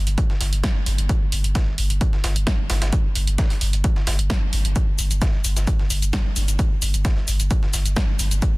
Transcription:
0.07 G1, closed hi-hat
0.18 kick, closed hi-hat
0.30 G1, snare
0.41 G1, snare, closed hi-hat, open hi-hat
0.53 G1, closed hi-hat
0.64 kick, snare, closed hi-hat
0.76 G1
0.86 G1, closed hi-hat, open hi-hat
0.98 G1, closed hi-hat
1.09 kick, closed hi-hat
1.21 G1
1.32 G1, closed hi-hat, open hi-hat
1.44 G1, closed hi-hat
1.55 kick, snare, closed hi-hat
1.67 G1
1.78 G1, closed hi-hat, open hi-hat
1.90 G1, closed hi-hat
2.01 kick, closed hi-hat
2.13 G1, snare
2.24 G1, snare, closed hi-hat, open hi-hat
2.36 G1, closed hi-hat
2.47 kick, snare, closed hi-hat
2.59 G1
2.70 G1, snare, closed hi-hat, open hi-hat
2.82 G1, snare, closed hi-hat
2.93 kick, closed hi-hat
3.05 G1
3.15 G1, closed hi-hat, open hi-hat
3.27 G1, closed hi-hat
3.38 kick, snare, closed hi-hat
3.50 G1, snare, open hi-hat
3.61 G1, closed hi-hat, open hi-hat
3.73 G1, closed hi-hat
3.84 kick, closed hi-hat
3.96 G1, snare
4.07 G1, snare, closed hi-hat, open hi-hat
4.19 G1, closed hi-hat
4.30 kick, snare, closed hi-hat
4.42 G1
4.53 G1, closed hi-hat, open hi-hat
4.65 G1, closed hi-hat
4.76 kick, closed hi-hat, shaker
4.88 G1
4.99 G1, closed hi-hat, open hi-hat, shaker
5.11 G1, closed hi-hat, shaker
5.22 kick, snare, closed hi-hat, shaker
5.34 G1
5.44 G1, closed hi-hat, open hi-hat, shaker
5.56 G1, snare, closed hi-hat, shaker
5.67 kick, closed hi-hat, shaker
5.79 G1, snare
5.90 G1, closed hi-hat, open hi-hat, shaker
6.02 G1, closed hi-hat, shaker
6.13 kick, snare, closed hi-hat, shaker
6.25 G1
6.36 G1, closed hi-hat, open hi-hat, shaker
6.48 G1, closed hi-hat, shaker
6.59 kick, closed hi-hat, shaker
6.71 G1
6.82 G1, closed hi-hat, open hi-hat, shaker
6.94 G1, closed hi-hat, shaker
7.05 kick, snare, closed hi-hat, shaker
7.17 G1, snare
7.28 G1, closed hi-hat, open hi-hat, shaker
7.40 G1, closed hi-hat, shaker
7.51 kick, closed hi-hat, shaker
7.63 G1, snare
7.74 G1, snare, closed hi-hat, open hi-hat, shaker
7.86 G1, closed hi-hat, shaker
7.96 kick, snare, closed hi-hat, shaker
8.08 G1
8.19 G1, closed hi-hat, open hi-hat, shaker
8.31 G1, closed hi-hat, shaker
8.42 kick, closed hi-hat, shaker
8.54 G1

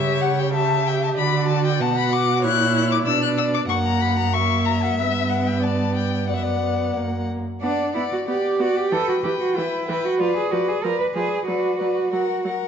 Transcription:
Already playing: C#3 G4 C#5 E5
0.21 F#5
0.39 G5
0.53 G4 E5 A5
0.87 G5
1.03 A5
1.17 D3 F#4 D5 B5
1.48 A5
1.65 G5
1.80 B2 F#4 F#5 A5
1.97 B5
2.13 D6
2.43 A#2 E4 C#5 F#6
2.92 D6
3.06 B2 D4 D5 E6
3.23 F#6
3.38 E6
3.54 D6
3.69 F#2 A#3 F#5 C#6
3.86 A#5
4.01 B5
4.18 A#5
4.33 A#3 E5 C#6
4.65 A#5
4.82 F#5
4.98 G2 B3 E5
5.30 F#5
5.47 G5
5.63 D5 A5
5.95 G5
6.28 F#2 B3 D5 F#5
6.36 E5
6.43 D5
6.96 F#2 A#3
7.61 B3 D4 D5 F#5
7.94 B3 E4 D5 F#5
8.12 F#4
8.27 B3 G4 D5 F#5
8.58 B3 F#4 D5 F#5
8.77 G4
8.90 E3 A4 B4 G5
9.09 F#4
9.23 E3 G4 B4 G5
9.41 F#4
9.55 E3 E4 B4 G5
9.87 E3 B4 G5
10.05 F#4
10.19 F3 F4 B4 D5
10.37 G#4
10.51 F3 F#4 B4 D5
10.68 G#4
10.83 F3 A#4 B4 D5
11.00 B4
11.15 F3 G#4 B4 D5
11.47 F#3 F#4 B4 D5
11.79 F#3 B4 D5
12.12 F#3 A#4 F#5
12.45 F#3 A#4 F#5

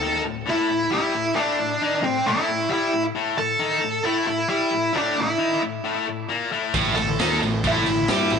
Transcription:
Already playing: A4 A5
0.01 D#3 D#4
0.24 A2
0.46 A2 A3 E4 E5
0.69 A2
0.91 G3 E4 G4 E5
1.14 A2
1.35 A2 A3 D4 D5
1.59 A2
1.82 D#3 D#4
2.03 A2 C4 C5
2.26 A2 A3 E4 E5
2.48 A2
2.69 G3 E4 G4 E5
2.93 A2
3.15 A2 A3
3.37 A2 A4 A5
3.59 D#3 D#4
3.81 A2
4.04 A2 A3 E4 E5
4.26 A2 E4 E5
4.49 G3 E4 G4 E5
4.71 A2
4.93 A2 A3 D4
4.98 D5
5.16 A2
5.20 E4 E5
5.38 D#3 D#4
5.61 A2
5.84 A2 A3
6.07 A2
6.29 A#2 A#3
6.52 A2 A3
6.74 A1 A2 A3, kick, crash
6.95 A1 A2 A4 A5, crash
7.19 D#2 D#3 D#4, snare, crash
7.32 snare
7.42 A1 A2, crash
7.64 A1 A2 A3 E4, kick, crash
7.72 E5
7.86 A1 A2, crash
8.08 G2 G3 E4 G4 E5, snare, crash
8.30 A1 A2, crash

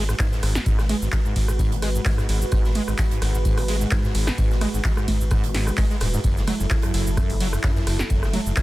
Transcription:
Already playing: G#1 G#3 F#4 B4
0.09 G#2, cross-stick, shaker
0.19 G#2 D#3, kick, snare, clap, ride, tambourine, shaker
0.32 G#2, snare, shaker
0.43 G#1 G#2, cross-stick, open hi-hat, ride, tambourine
0.55 G#2, snare, shaker
0.66 G#1 G#2, kick, ride, tambourine, shaker
0.79 B2, cross-stick, snare, shaker
0.89 G#3, open hi-hat, ride, tambourine, low conga
1.02 G#1 G#2, shaker
1.12 D#3, kick, cross-stick, snare, clap, ride, tambourine, shaker
1.25 G#2, shaker
1.36 G#1 G#2, kick, open hi-hat, ride, tambourine
1.48 G#2, cross-stick, shaker
1.59 G#2, kick, ride, tambourine, shaker
1.71 G#1 B2, closed hi-hat, shaker
1.82 G#3, cross-stick, open hi-hat, ride, tambourine
1.95 G#2, shaker
2.05 G#2 D#3, kick, snare, clap, open hi-hat, ride, tambourine, shaker
2.17 G#2, cross-stick, snare, shaker
2.29 G#1 G#2, open hi-hat, ride, tambourine
2.41 G#2, shaker
2.52 G#1 G#2, kick, cross-stick, ride, tambourine, shaker
2.65 B2, snare, shaker
2.75 G#3, open hi-hat, ride, tambourine, low conga
2.88 G#1 G#2, cross-stick, shaker
2.98 D#3, kick, snare, clap, ride, tambourine, shaker
3.11 G#2, closed hi-hat, shaker
3.22 G#1 G#2, cross-stick, snare, open hi-hat, ride, tambourine
3.34 G#2, shaker
3.45 G#2, kick, ride, tambourine, shaker
3.57 G#1 B2, cross-stick, open hi-hat, shaker
3.68 G#3, snare, open hi-hat, ride, tambourine
3.81 G#2, shaker
3.91 G#2 D#3, kick, cross-stick, snare, clap, ride, tambourine, shaker
4.04 G#2, snare, shaker
4.15 G#1 G#2, open hi-hat, ride, tambourine
4.27 G#2, cross-stick, snare, shaker
4.38 G#1 G#2, kick, ride, tambourine, shaker
4.51 B2, snare, shaker
4.61 G#3, cross-stick, open hi-hat, ride, tambourine, low conga
4.74 G#1 G#2, shaker
4.84 D#3, kick, snare, clap, ride, tambourine, shaker
4.97 G#2, cross-stick, shaker
5.08 G#1 G#2, kick, open hi-hat, ride, tambourine, low conga
5.20 G#2, shaker
5.31 G#2, kick, cross-stick, ride, tambourine, shaker
5.43 G#1 B2, closed hi-hat, shaker
5.55 G#2, snare, open hi-hat, ride, tambourine
5.67 G#3, cross-stick, shaker
5.77 G#1 G#3, kick, snare, clap, open hi-hat, ride, tambourine, shaker
5.90 G#3, snare, shaker
6.00 D#1 G#2, cross-stick, open hi-hat, ride, tambourine
6.13 G#2, shaker
6.24 F#1 F#2 F#3 E4 A4, kick, ride, tambourine, shaker
6.37 A2, snare, shaker
6.47 F#3, cross-stick, open hi-hat, ride, tambourine, low conga
6.60 F#1 F#2, shaker
6.70 C#3, kick, snare, clap, ride, tambourine, shaker
6.82 F#2, cross-stick, closed hi-hat, shaker
6.94 F#1 F#2, snare, open hi-hat, ride, tambourine
7.06 F#2, shaker
7.17 F#2, kick, cross-stick, ride, tambourine, shaker
7.30 F#1 A2, open hi-hat, shaker
7.40 F#3, snare, open hi-hat, ride, tambourine
7.53 F#2, cross-stick, shaker
7.63 F#2 C#3, kick, snare, clap, ride, tambourine, shaker
7.76 F#2, snare, shaker
7.87 F#1 F#2, cross-stick, open hi-hat, ride, tambourine
7.99 F#2, snare, shaker
8.10 F#1 F#2, kick, ride, tambourine, shaker
8.23 A2, cross-stick, snare, shaker
8.33 F#3, open hi-hat, ride, tambourine, low conga
8.46 F#1 F#2, shaker
8.56 C#3, kick, cross-stick, snare, clap, ride, tambourine, shaker

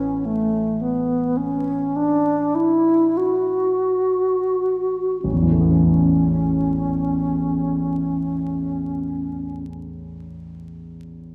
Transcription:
Already playing: A1 C#4 A4 C#5 E5 G#5
0.25 A3
0.81 B3
1.37 C#4
1.96 D4
2.55 E4
3.17 F#4
5.22 A1 C#4
5.33 E2
5.43 E3
5.51 A3
5.61 B3
5.70 C#4

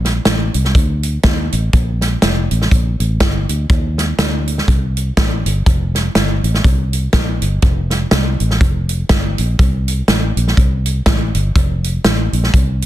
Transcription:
Already playing: A#1
0.05 snare, closed hi-hat
0.25 A1, snare, closed hi-hat
0.54 C2, closed hi-hat
0.65 snare
0.75 D2, kick, closed hi-hat
1.03 closed hi-hat
1.23 D#2, kick, snare, closed hi-hat
1.52 A1, closed hi-hat
1.73 A#1, kick, closed hi-hat
2.01 snare, closed hi-hat
2.22 F1, snare, closed hi-hat
2.51 A1, closed hi-hat
2.62 snare
2.71 A#1, kick, closed hi-hat
3.00 A1, closed hi-hat
3.20 G1, kick, snare, closed hi-hat
3.49 D2, closed hi-hat
3.70 D#2, kick, closed hi-hat
3.98 snare, closed hi-hat
4.18 D2, snare, closed hi-hat
4.47 closed hi-hat
4.58 snare
4.68 C2, kick, closed hi-hat
4.97 closed hi-hat
5.17 A1, kick, snare, closed hi-hat
5.46 G1, closed hi-hat
5.66 F1, kick, closed hi-hat
5.95 snare, closed hi-hat
6.15 G1, snare, closed hi-hat
6.43 A1, closed hi-hat
6.54 snare
6.64 C2, kick, closed hi-hat
6.93 closed hi-hat
7.13 A#1, kick, snare, closed hi-hat
7.42 G1, closed hi-hat
7.62 F1, kick, closed hi-hat
7.90 snare, closed hi-hat
8.11 C2, snare, closed hi-hat
8.40 A1, closed hi-hat
8.51 snare
8.61 F1, kick, closed hi-hat
8.89 closed hi-hat
9.09 G1, kick, snare, closed hi-hat
9.38 A#1, closed hi-hat
9.59 C2, kick, closed hi-hat
9.88 closed hi-hat
10.08 A1, snare, closed hi-hat
10.37 A#1, closed hi-hat
10.48 snare
10.57 C2, kick, closed hi-hat
10.86 closed hi-hat
11.06 A1, kick, snare, closed hi-hat
11.35 G1, closed hi-hat
11.55 F1, kick, closed hi-hat
11.84 closed hi-hat
12.04 A1, snare, closed hi-hat
12.33 A#1, closed hi-hat
12.44 snare
12.54 C2, kick, closed hi-hat
12.82 closed hi-hat

